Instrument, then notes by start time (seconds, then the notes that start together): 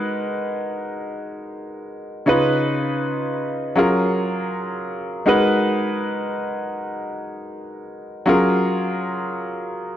grand piano
Already playing: G#3 D#4 F#4 A#4 B4
2.26 C#3 C#4 D#4 F4 B4
3.76 F#3 C#4 F4 G#4 A#4
5.26 G#3 D#4 F#4 A#4 B4
8.26 F#3 C#4 F4 G#4 A#4